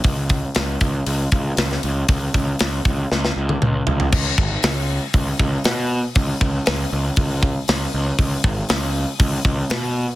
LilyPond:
<<
  \new Staff \with { instrumentName = "Picked electric bass" } { \clef bass \time 4/4 \tempo 4 = 118 cis,4 cis,8 cis,8 cis,8 cis,8 cis,8 cis,8 | cis,8 cis,8 cis,8 cis,8 cis,8 cis,8 cis,8 cis,8 | cis,8 gis,,8 cis,4 cis,8 cis,8 b,4 | cis,8 cis,8 cis,8 cis,8 cis,4 cis,8 cis,8 |
cis,8 gis,,8 cis,4 cis,8 cis,8 b,4 | }
  \new DrumStaff \with { instrumentName = "Drums" } \drummode { \time 4/4 <hho bd>8 <hho bd>8 <hho sn>8 <hho bd>8 hho8 <hho bd>8 <hho sn>16 sn16 hho8 | <hho bd>8 <hho bd>8 <hho sn>8 <hho bd>8 sn16 sn8 tommh16 toml8 tomfh16 tomfh16 | <cymc bd>8 bd8 <hho sn>4 <hho bd>8 bd8 <hho sn>4 | <hho bd>8 bd8 <hho sn>4 <hho bd>8 bd8 <hho sn>4 |
<hho bd>8 bd8 <hho sn>4 <hho bd>8 bd8 <hho sn>4 | }
>>